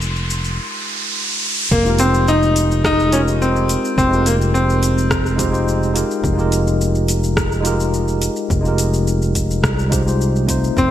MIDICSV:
0, 0, Header, 1, 7, 480
1, 0, Start_track
1, 0, Key_signature, -4, "minor"
1, 0, Tempo, 566038
1, 1448, Time_signature, 4, 2, 24, 8
1, 9250, End_track
2, 0, Start_track
2, 0, Title_t, "Synth texture"
2, 0, Program_c, 0, 99
2, 0, Note_on_c, 0, 84, 74
2, 478, Note_off_c, 0, 84, 0
2, 9250, End_track
3, 0, Start_track
3, 0, Title_t, "Tine electric piano"
3, 0, Program_c, 1, 4
3, 0, Note_on_c, 1, 56, 67
3, 0, Note_on_c, 1, 63, 65
3, 0, Note_on_c, 1, 65, 65
3, 0, Note_on_c, 1, 67, 64
3, 0, Note_on_c, 1, 70, 81
3, 1405, Note_off_c, 1, 56, 0
3, 1412, Note_off_c, 1, 63, 0
3, 1422, Note_off_c, 1, 65, 0
3, 1429, Note_off_c, 1, 67, 0
3, 1437, Note_off_c, 1, 70, 0
3, 1549, Note_on_c, 1, 56, 80
3, 1566, Note_on_c, 1, 63, 77
3, 1578, Note_on_c, 1, 65, 78
3, 1599, Note_on_c, 1, 67, 75
3, 1610, Note_on_c, 1, 70, 93
3, 2609, Note_off_c, 1, 56, 0
3, 2617, Note_off_c, 1, 63, 0
3, 2618, Note_on_c, 1, 56, 84
3, 2623, Note_off_c, 1, 65, 0
3, 2634, Note_off_c, 1, 67, 0
3, 2635, Note_on_c, 1, 63, 81
3, 2640, Note_off_c, 1, 70, 0
3, 2652, Note_on_c, 1, 65, 81
3, 2668, Note_on_c, 1, 67, 81
3, 2678, Note_on_c, 1, 70, 99
3, 3446, Note_off_c, 1, 56, 0
3, 3454, Note_off_c, 1, 63, 0
3, 3460, Note_on_c, 1, 56, 82
3, 3463, Note_off_c, 1, 65, 0
3, 3471, Note_off_c, 1, 67, 0
3, 3476, Note_off_c, 1, 70, 0
3, 3481, Note_on_c, 1, 63, 70
3, 3493, Note_on_c, 1, 65, 77
3, 3508, Note_on_c, 1, 67, 74
3, 3524, Note_on_c, 1, 70, 87
3, 4529, Note_off_c, 1, 56, 0
3, 4540, Note_off_c, 1, 63, 0
3, 4544, Note_on_c, 1, 56, 80
3, 4546, Note_off_c, 1, 65, 0
3, 4552, Note_on_c, 1, 63, 74
3, 4553, Note_off_c, 1, 67, 0
3, 4561, Note_off_c, 1, 70, 0
3, 4562, Note_on_c, 1, 65, 75
3, 4568, Note_on_c, 1, 67, 77
3, 4577, Note_on_c, 1, 72, 87
3, 4649, Note_off_c, 1, 56, 0
3, 4653, Note_off_c, 1, 63, 0
3, 4658, Note_off_c, 1, 65, 0
3, 4661, Note_off_c, 1, 67, 0
3, 4663, Note_on_c, 1, 56, 78
3, 4666, Note_off_c, 1, 72, 0
3, 4673, Note_on_c, 1, 63, 69
3, 4682, Note_on_c, 1, 65, 72
3, 4685, Note_on_c, 1, 67, 70
3, 4694, Note_on_c, 1, 72, 88
3, 5006, Note_off_c, 1, 56, 0
3, 5011, Note_off_c, 1, 63, 0
3, 5015, Note_off_c, 1, 65, 0
3, 5017, Note_off_c, 1, 67, 0
3, 5022, Note_off_c, 1, 72, 0
3, 5029, Note_on_c, 1, 56, 85
3, 5036, Note_on_c, 1, 63, 81
3, 5041, Note_on_c, 1, 65, 78
3, 5051, Note_on_c, 1, 67, 77
3, 5062, Note_on_c, 1, 70, 91
3, 5361, Note_off_c, 1, 56, 0
3, 5371, Note_on_c, 1, 56, 84
3, 5373, Note_off_c, 1, 63, 0
3, 5378, Note_off_c, 1, 65, 0
3, 5383, Note_off_c, 1, 67, 0
3, 5383, Note_on_c, 1, 63, 77
3, 5388, Note_off_c, 1, 70, 0
3, 5404, Note_on_c, 1, 65, 82
3, 5417, Note_on_c, 1, 67, 79
3, 5433, Note_on_c, 1, 70, 95
3, 6439, Note_off_c, 1, 56, 0
3, 6446, Note_off_c, 1, 63, 0
3, 6449, Note_on_c, 1, 56, 90
3, 6457, Note_off_c, 1, 65, 0
3, 6463, Note_off_c, 1, 67, 0
3, 6463, Note_on_c, 1, 63, 79
3, 6471, Note_off_c, 1, 70, 0
3, 6476, Note_on_c, 1, 65, 83
3, 6495, Note_on_c, 1, 67, 82
3, 6505, Note_on_c, 1, 70, 100
3, 7282, Note_off_c, 1, 56, 0
3, 7289, Note_off_c, 1, 63, 0
3, 7295, Note_off_c, 1, 65, 0
3, 7297, Note_on_c, 1, 56, 84
3, 7304, Note_off_c, 1, 67, 0
3, 7310, Note_off_c, 1, 70, 0
3, 7316, Note_on_c, 1, 63, 79
3, 7326, Note_on_c, 1, 65, 79
3, 7347, Note_on_c, 1, 67, 73
3, 7363, Note_on_c, 1, 70, 86
3, 8368, Note_off_c, 1, 56, 0
3, 8377, Note_off_c, 1, 63, 0
3, 8382, Note_off_c, 1, 65, 0
3, 8391, Note_on_c, 1, 56, 77
3, 8393, Note_off_c, 1, 67, 0
3, 8398, Note_on_c, 1, 63, 74
3, 8401, Note_off_c, 1, 70, 0
3, 8403, Note_on_c, 1, 65, 74
3, 8414, Note_on_c, 1, 67, 70
3, 8414, Note_on_c, 1, 72, 84
3, 8492, Note_off_c, 1, 56, 0
3, 8496, Note_off_c, 1, 63, 0
3, 8499, Note_off_c, 1, 65, 0
3, 8504, Note_off_c, 1, 67, 0
3, 8504, Note_off_c, 1, 72, 0
3, 8519, Note_on_c, 1, 56, 80
3, 8529, Note_on_c, 1, 63, 73
3, 8534, Note_on_c, 1, 65, 67
3, 8541, Note_on_c, 1, 67, 67
3, 8553, Note_on_c, 1, 72, 85
3, 8854, Note_off_c, 1, 56, 0
3, 8859, Note_off_c, 1, 63, 0
3, 8861, Note_off_c, 1, 65, 0
3, 8865, Note_off_c, 1, 67, 0
3, 8871, Note_off_c, 1, 72, 0
3, 8875, Note_on_c, 1, 57, 81
3, 8879, Note_on_c, 1, 60, 72
3, 8887, Note_on_c, 1, 63, 74
3, 8895, Note_on_c, 1, 65, 72
3, 8907, Note_on_c, 1, 72, 90
3, 9210, Note_off_c, 1, 57, 0
3, 9217, Note_off_c, 1, 60, 0
3, 9220, Note_off_c, 1, 63, 0
3, 9220, Note_on_c, 1, 57, 87
3, 9225, Note_off_c, 1, 65, 0
3, 9231, Note_off_c, 1, 72, 0
3, 9250, Note_off_c, 1, 57, 0
3, 9250, End_track
4, 0, Start_track
4, 0, Title_t, "Grand piano"
4, 0, Program_c, 2, 0
4, 1455, Note_on_c, 2, 58, 94
4, 1692, Note_on_c, 2, 60, 101
4, 1699, Note_off_c, 2, 58, 0
4, 1937, Note_off_c, 2, 60, 0
4, 1937, Note_on_c, 2, 63, 107
4, 2379, Note_off_c, 2, 63, 0
4, 2421, Note_on_c, 2, 63, 114
4, 2653, Note_on_c, 2, 61, 96
4, 2661, Note_off_c, 2, 63, 0
4, 2706, Note_off_c, 2, 61, 0
4, 2897, Note_on_c, 2, 60, 88
4, 3340, Note_off_c, 2, 60, 0
4, 3373, Note_on_c, 2, 60, 98
4, 3594, Note_off_c, 2, 60, 0
4, 3614, Note_on_c, 2, 58, 86
4, 3668, Note_off_c, 2, 58, 0
4, 3852, Note_on_c, 2, 60, 84
4, 5016, Note_off_c, 2, 60, 0
4, 9143, Note_on_c, 2, 60, 97
4, 9250, Note_off_c, 2, 60, 0
4, 9250, End_track
5, 0, Start_track
5, 0, Title_t, "Fretless electric bass"
5, 0, Program_c, 3, 35
5, 0, Note_on_c, 3, 29, 79
5, 492, Note_off_c, 3, 29, 0
5, 1454, Note_on_c, 3, 29, 95
5, 3183, Note_off_c, 3, 29, 0
5, 3373, Note_on_c, 3, 29, 92
5, 5103, Note_off_c, 3, 29, 0
5, 5287, Note_on_c, 3, 29, 91
5, 7020, Note_off_c, 3, 29, 0
5, 7212, Note_on_c, 3, 29, 87
5, 8167, Note_off_c, 3, 29, 0
5, 8172, Note_on_c, 3, 36, 93
5, 9063, Note_off_c, 3, 36, 0
5, 9134, Note_on_c, 3, 29, 97
5, 9250, Note_off_c, 3, 29, 0
5, 9250, End_track
6, 0, Start_track
6, 0, Title_t, "Riser"
6, 0, Program_c, 4, 103
6, 0, Note_on_c, 4, 60, 63
6, 1447, Note_off_c, 4, 60, 0
6, 9250, End_track
7, 0, Start_track
7, 0, Title_t, "Drums"
7, 13, Note_on_c, 9, 82, 40
7, 98, Note_off_c, 9, 82, 0
7, 136, Note_on_c, 9, 82, 19
7, 221, Note_off_c, 9, 82, 0
7, 256, Note_on_c, 9, 82, 71
7, 341, Note_off_c, 9, 82, 0
7, 375, Note_on_c, 9, 82, 32
7, 460, Note_off_c, 9, 82, 0
7, 1453, Note_on_c, 9, 36, 116
7, 1455, Note_on_c, 9, 82, 45
7, 1538, Note_off_c, 9, 36, 0
7, 1540, Note_off_c, 9, 82, 0
7, 1576, Note_on_c, 9, 82, 22
7, 1661, Note_off_c, 9, 82, 0
7, 1684, Note_on_c, 9, 42, 94
7, 1690, Note_on_c, 9, 82, 72
7, 1768, Note_off_c, 9, 42, 0
7, 1775, Note_off_c, 9, 82, 0
7, 1817, Note_on_c, 9, 82, 35
7, 1902, Note_off_c, 9, 82, 0
7, 1932, Note_on_c, 9, 82, 44
7, 2017, Note_off_c, 9, 82, 0
7, 2059, Note_on_c, 9, 82, 22
7, 2144, Note_off_c, 9, 82, 0
7, 2170, Note_on_c, 9, 42, 88
7, 2177, Note_on_c, 9, 82, 74
7, 2255, Note_off_c, 9, 42, 0
7, 2262, Note_off_c, 9, 82, 0
7, 2303, Note_on_c, 9, 82, 34
7, 2388, Note_off_c, 9, 82, 0
7, 2412, Note_on_c, 9, 36, 121
7, 2414, Note_on_c, 9, 37, 83
7, 2420, Note_on_c, 9, 82, 46
7, 2497, Note_off_c, 9, 36, 0
7, 2499, Note_off_c, 9, 37, 0
7, 2505, Note_off_c, 9, 82, 0
7, 2542, Note_on_c, 9, 82, 23
7, 2627, Note_off_c, 9, 82, 0
7, 2650, Note_on_c, 9, 42, 96
7, 2656, Note_on_c, 9, 82, 77
7, 2734, Note_off_c, 9, 42, 0
7, 2741, Note_off_c, 9, 82, 0
7, 2781, Note_on_c, 9, 82, 37
7, 2865, Note_off_c, 9, 82, 0
7, 2900, Note_on_c, 9, 82, 43
7, 2984, Note_off_c, 9, 82, 0
7, 3021, Note_on_c, 9, 82, 21
7, 3106, Note_off_c, 9, 82, 0
7, 3132, Note_on_c, 9, 42, 92
7, 3138, Note_on_c, 9, 82, 78
7, 3217, Note_off_c, 9, 42, 0
7, 3223, Note_off_c, 9, 82, 0
7, 3264, Note_on_c, 9, 82, 32
7, 3348, Note_off_c, 9, 82, 0
7, 3373, Note_on_c, 9, 36, 121
7, 3380, Note_on_c, 9, 82, 47
7, 3457, Note_off_c, 9, 36, 0
7, 3464, Note_off_c, 9, 82, 0
7, 3504, Note_on_c, 9, 82, 24
7, 3589, Note_off_c, 9, 82, 0
7, 3613, Note_on_c, 9, 42, 95
7, 3620, Note_on_c, 9, 82, 81
7, 3698, Note_off_c, 9, 42, 0
7, 3704, Note_off_c, 9, 82, 0
7, 3745, Note_on_c, 9, 82, 38
7, 3829, Note_off_c, 9, 82, 0
7, 3858, Note_on_c, 9, 82, 44
7, 3943, Note_off_c, 9, 82, 0
7, 3984, Note_on_c, 9, 82, 23
7, 4069, Note_off_c, 9, 82, 0
7, 4093, Note_on_c, 9, 42, 85
7, 4099, Note_on_c, 9, 82, 83
7, 4178, Note_off_c, 9, 42, 0
7, 4184, Note_off_c, 9, 82, 0
7, 4225, Note_on_c, 9, 82, 37
7, 4310, Note_off_c, 9, 82, 0
7, 4331, Note_on_c, 9, 36, 123
7, 4331, Note_on_c, 9, 37, 85
7, 4338, Note_on_c, 9, 82, 47
7, 4416, Note_off_c, 9, 36, 0
7, 4416, Note_off_c, 9, 37, 0
7, 4423, Note_off_c, 9, 82, 0
7, 4462, Note_on_c, 9, 82, 24
7, 4547, Note_off_c, 9, 82, 0
7, 4570, Note_on_c, 9, 36, 116
7, 4571, Note_on_c, 9, 42, 99
7, 4577, Note_on_c, 9, 82, 84
7, 4655, Note_off_c, 9, 36, 0
7, 4656, Note_off_c, 9, 42, 0
7, 4662, Note_off_c, 9, 82, 0
7, 4701, Note_on_c, 9, 82, 36
7, 4786, Note_off_c, 9, 82, 0
7, 4819, Note_on_c, 9, 82, 45
7, 4903, Note_off_c, 9, 82, 0
7, 4944, Note_on_c, 9, 82, 24
7, 5029, Note_off_c, 9, 82, 0
7, 5050, Note_on_c, 9, 42, 92
7, 5057, Note_on_c, 9, 82, 78
7, 5135, Note_off_c, 9, 42, 0
7, 5142, Note_off_c, 9, 82, 0
7, 5181, Note_on_c, 9, 82, 33
7, 5266, Note_off_c, 9, 82, 0
7, 5288, Note_on_c, 9, 36, 122
7, 5296, Note_on_c, 9, 82, 45
7, 5373, Note_off_c, 9, 36, 0
7, 5381, Note_off_c, 9, 82, 0
7, 5417, Note_on_c, 9, 82, 23
7, 5502, Note_off_c, 9, 82, 0
7, 5530, Note_on_c, 9, 42, 86
7, 5536, Note_on_c, 9, 82, 80
7, 5614, Note_off_c, 9, 42, 0
7, 5621, Note_off_c, 9, 82, 0
7, 5660, Note_on_c, 9, 82, 36
7, 5744, Note_off_c, 9, 82, 0
7, 5776, Note_on_c, 9, 82, 47
7, 5861, Note_off_c, 9, 82, 0
7, 5895, Note_on_c, 9, 82, 25
7, 5979, Note_off_c, 9, 82, 0
7, 6007, Note_on_c, 9, 42, 81
7, 6014, Note_on_c, 9, 82, 81
7, 6092, Note_off_c, 9, 42, 0
7, 6098, Note_off_c, 9, 82, 0
7, 6136, Note_on_c, 9, 82, 35
7, 6220, Note_off_c, 9, 82, 0
7, 6248, Note_on_c, 9, 36, 127
7, 6249, Note_on_c, 9, 37, 79
7, 6255, Note_on_c, 9, 82, 47
7, 6333, Note_off_c, 9, 36, 0
7, 6333, Note_off_c, 9, 37, 0
7, 6340, Note_off_c, 9, 82, 0
7, 6378, Note_on_c, 9, 82, 23
7, 6462, Note_off_c, 9, 82, 0
7, 6486, Note_on_c, 9, 42, 90
7, 6492, Note_on_c, 9, 82, 80
7, 6571, Note_off_c, 9, 42, 0
7, 6577, Note_off_c, 9, 82, 0
7, 6615, Note_on_c, 9, 82, 35
7, 6700, Note_off_c, 9, 82, 0
7, 6732, Note_on_c, 9, 82, 43
7, 6817, Note_off_c, 9, 82, 0
7, 6851, Note_on_c, 9, 82, 24
7, 6936, Note_off_c, 9, 82, 0
7, 6967, Note_on_c, 9, 42, 90
7, 6973, Note_on_c, 9, 82, 82
7, 7052, Note_off_c, 9, 42, 0
7, 7058, Note_off_c, 9, 82, 0
7, 7090, Note_on_c, 9, 82, 35
7, 7175, Note_off_c, 9, 82, 0
7, 7209, Note_on_c, 9, 36, 123
7, 7214, Note_on_c, 9, 82, 47
7, 7294, Note_off_c, 9, 36, 0
7, 7299, Note_off_c, 9, 82, 0
7, 7336, Note_on_c, 9, 82, 23
7, 7420, Note_off_c, 9, 82, 0
7, 7448, Note_on_c, 9, 42, 89
7, 7454, Note_on_c, 9, 82, 82
7, 7533, Note_off_c, 9, 42, 0
7, 7539, Note_off_c, 9, 82, 0
7, 7577, Note_on_c, 9, 82, 36
7, 7661, Note_off_c, 9, 82, 0
7, 7694, Note_on_c, 9, 82, 46
7, 7779, Note_off_c, 9, 82, 0
7, 7819, Note_on_c, 9, 82, 24
7, 7904, Note_off_c, 9, 82, 0
7, 7931, Note_on_c, 9, 36, 61
7, 7931, Note_on_c, 9, 42, 80
7, 7937, Note_on_c, 9, 82, 81
7, 8016, Note_off_c, 9, 36, 0
7, 8016, Note_off_c, 9, 42, 0
7, 8022, Note_off_c, 9, 82, 0
7, 8062, Note_on_c, 9, 82, 35
7, 8147, Note_off_c, 9, 82, 0
7, 8171, Note_on_c, 9, 36, 127
7, 8171, Note_on_c, 9, 37, 78
7, 8178, Note_on_c, 9, 82, 44
7, 8256, Note_off_c, 9, 36, 0
7, 8256, Note_off_c, 9, 37, 0
7, 8262, Note_off_c, 9, 82, 0
7, 8302, Note_on_c, 9, 82, 24
7, 8387, Note_off_c, 9, 82, 0
7, 8412, Note_on_c, 9, 36, 120
7, 8412, Note_on_c, 9, 42, 83
7, 8418, Note_on_c, 9, 82, 86
7, 8496, Note_off_c, 9, 36, 0
7, 8497, Note_off_c, 9, 42, 0
7, 8503, Note_off_c, 9, 82, 0
7, 8546, Note_on_c, 9, 82, 35
7, 8631, Note_off_c, 9, 82, 0
7, 8660, Note_on_c, 9, 82, 47
7, 8745, Note_off_c, 9, 82, 0
7, 8783, Note_on_c, 9, 82, 24
7, 8868, Note_off_c, 9, 82, 0
7, 8891, Note_on_c, 9, 36, 64
7, 8892, Note_on_c, 9, 42, 85
7, 8898, Note_on_c, 9, 82, 83
7, 8976, Note_off_c, 9, 36, 0
7, 8977, Note_off_c, 9, 42, 0
7, 8983, Note_off_c, 9, 82, 0
7, 9024, Note_on_c, 9, 82, 33
7, 9109, Note_off_c, 9, 82, 0
7, 9130, Note_on_c, 9, 36, 113
7, 9139, Note_on_c, 9, 82, 46
7, 9215, Note_off_c, 9, 36, 0
7, 9223, Note_off_c, 9, 82, 0
7, 9250, End_track
0, 0, End_of_file